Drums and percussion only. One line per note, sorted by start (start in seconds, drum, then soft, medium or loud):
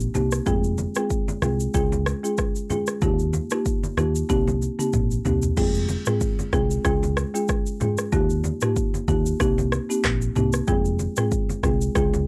0.00 shaker medium
0.15 high conga medium
0.15 low conga medium
0.15 shaker medium
0.32 cross-stick medium
0.32 shaker medium
0.46 kick loud
0.46 low conga medium
0.46 shaker medium
0.64 shaker medium
0.78 high conga medium
0.78 shaker medium
0.95 cross-stick medium
0.95 shaker medium
1.10 kick medium
1.10 shaker medium
1.28 high conga medium
1.28 shaker soft
1.42 cross-stick medium
1.42 high conga medium
1.42 low conga medium
1.42 shaker medium
1.60 shaker medium
1.74 kick loud
1.74 shaker medium
1.92 high conga medium
1.92 shaker soft
2.06 cross-stick loud
2.06 high conga soft
2.06 shaker medium
2.25 shaker medium
2.38 kick medium
2.38 cross-stick medium
2.38 shaker medium
2.56 shaker medium
2.70 high conga medium
2.70 low conga medium
2.70 shaker medium
2.87 cross-stick medium
2.87 shaker medium
3.02 kick loud
3.02 low conga medium
3.02 shaker medium
3.19 shaker soft
3.33 high conga medium
3.33 shaker medium
3.51 cross-stick medium
3.51 shaker medium
3.66 kick medium
3.66 shaker medium
3.83 high conga medium
3.83 shaker soft
3.97 cross-stick medium
3.97 high conga medium
3.97 low conga medium
3.97 shaker medium
4.15 shaker medium
4.30 kick loud
4.30 high tom medium
4.30 shaker medium
4.47 high tom medium
4.47 high conga medium
4.47 shaker soft
4.62 high conga soft
4.62 shaker medium
4.79 mid tom medium
4.79 shaker medium
4.93 kick loud
4.93 mid tom medium
4.93 shaker medium
5.11 shaker medium
5.25 floor tom loud
5.25 high conga medium
5.25 low conga medium
5.25 shaker medium
5.42 floor tom medium
5.42 shaker medium
5.57 kick loud
5.57 crash medium
5.57 shaker medium
5.75 shaker medium
5.89 high conga medium
5.89 shaker medium
6.06 cross-stick medium
6.06 mid tom loud
6.06 shaker medium
6.21 kick medium
6.21 shaker medium
6.39 high conga medium
6.39 shaker soft
6.53 kick loud
6.53 cross-stick medium
6.53 high conga medium
6.53 low conga medium
6.53 shaker medium
6.71 shaker medium
6.85 kick loud
6.85 cross-stick medium
6.85 shaker medium
7.03 high conga medium
7.03 shaker soft
7.17 cross-stick loud
7.17 high conga soft
7.17 shaker medium
7.35 shaker medium
7.48 kick loud
7.48 cross-stick medium
7.48 shaker medium
7.66 shaker medium
7.81 mid tom loud
7.81 high conga medium
7.81 low conga medium
7.81 shaker medium
7.98 cross-stick medium
7.98 shaker medium
8.12 kick loud
8.12 shaker medium
8.30 shaker medium
8.44 high conga medium
8.44 shaker medium
8.61 cross-stick medium
8.61 mid tom loud
8.61 shaker medium
8.76 kick medium
8.76 shaker medium
8.94 high conga medium
8.94 shaker medium
9.08 kick loud
9.08 high conga medium
9.08 low conga medium
9.08 shaker medium
9.26 shaker medium
9.40 kick loud
9.40 cross-stick medium
9.40 shaker medium
9.58 high conga medium
9.58 shaker soft
9.72 cross-stick loud
9.72 high conga soft
9.72 shaker medium
9.91 shaker medium
10.04 kick loud
10.04 cross-stick medium
10.04 clap medium
10.04 shaker medium
10.22 shaker medium
10.36 mid tom loud
10.36 high conga medium
10.36 low conga medium
10.36 shaker medium
10.53 cross-stick medium
10.53 shaker medium
10.68 kick loud
10.68 shaker medium
10.85 shaker soft
10.99 high conga medium
10.99 shaker medium
11.17 cross-stick medium
11.17 mid tom loud
11.17 shaker medium
11.32 kick medium
11.32 shaker medium
11.49 high conga medium
11.49 shaker soft
11.63 kick loud
11.63 cross-stick medium
11.63 high conga medium
11.63 low conga medium
11.63 shaker medium
11.81 shaker medium
11.95 kick loud
11.95 cross-stick medium
11.95 shaker medium
12.13 high conga medium
12.13 shaker soft